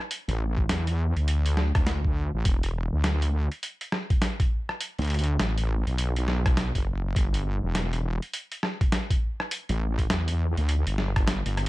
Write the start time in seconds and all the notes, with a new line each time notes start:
0.11 closed hi-hat
0.28 A1, closed hi-hat
0.58 kick
0.69 E2, snare, closed hi-hat
0.87 closed hi-hat
1.16 D2, closed hi-hat
1.28 closed hi-hat
1.46 closed hi-hat
1.57 snare
1.75 D2, kick, cross-stick, closed hi-hat
1.87 snare, closed hi-hat
2.05 kick
2.34 A1
2.45 E1, kick, closed hi-hat
2.63 closed hi-hat
2.93 D2
3.04 snare, closed hi-hat
3.22 closed hi-hat
3.52 closed hi-hat
3.63 closed hi-hat
3.81 closed hi-hat
3.92 cross-stick, snare
4.10 kick, closed hi-hat
4.22 snare, closed hi-hat
4.40 kick, closed hi-hat
4.69 cross-stick
4.81 closed hi-hat
4.99 D2, closed hi-hat
5.02 closed hi-hat
5.05 closed hi-hat
5.07 closed hi-hat
5.10 closed hi-hat
5.14 closed hi-hat
5.19 closed hi-hat
5.24 closed hi-hat
5.39 A1, snare, closed hi-hat
5.58 closed hi-hat
5.87 B1, closed hi-hat
5.98 closed hi-hat
6.16 closed hi-hat
6.28 snare
6.46 kick, cross-stick, closed hi-hat
6.57 snare, closed hi-hat
6.75 F#1, kick, closed hi-hat
7.16 G1, kick, closed hi-hat
7.34 closed hi-hat
7.64 E1
7.75 snare, closed hi-hat
7.93 closed hi-hat
8.22 closed hi-hat
8.34 closed hi-hat
8.52 closed hi-hat
8.63 cross-stick, snare
8.81 kick, closed hi-hat
8.92 snare, closed hi-hat
9.10 kick, closed hi-hat
9.40 cross-stick
9.51 closed hi-hat
9.69 A1, closed hi-hat
9.99 kick, closed hi-hat
10.10 E2, snare, closed hi-hat
10.28 closed hi-hat
10.57 D2, closed hi-hat
10.69 closed hi-hat
10.87 G1, closed hi-hat
10.98 snare
11.16 kick, cross-stick, closed hi-hat
11.28 snare, closed hi-hat
11.46 G1, closed hi-hat
11.57 cross-stick, closed hi-hat